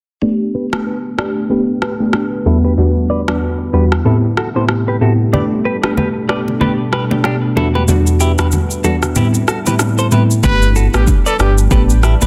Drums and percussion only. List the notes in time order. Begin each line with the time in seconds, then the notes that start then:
0.73 cross-stick
1.19 cross-stick
1.82 cross-stick
2.13 cross-stick
3.28 cross-stick
3.92 cross-stick
4.37 cross-stick
4.69 cross-stick
5.34 low conga
5.84 cross-stick
5.97 high bongo, low conga
6.29 cross-stick
6.48 low bongo
6.61 low conga
6.93 cross-stick
7.11 low bongo
7.24 cross-stick, high bongo
7.57 low bongo
7.75 high bongo
7.88 low conga, shaker
8.07 shaker
8.20 shaker
8.39 cross-stick, shaker
8.52 high bongo, low conga, shaker
8.71 shaker
8.84 high bongo, shaker
9.03 cross-stick, low bongo, shaker
9.16 low conga, shaker
9.34 shaker
9.48 cross-stick, shaker
9.66 low bongo, shaker
9.79 cross-stick, high bongo, shaker
9.98 shaker
10.12 low bongo, shaker
10.31 shaker
10.44 kick, low conga, shaker
10.62 shaker
10.76 shaker
10.94 cross-stick, shaker
11.07 kick, high bongo, low conga, shaker
11.26 shaker
11.40 cross-stick, high bongo, shaker
11.58 shaker
11.71 kick, low conga, shaker
11.90 shaker
12.03 cross-stick, shaker
12.22 low bongo, shaker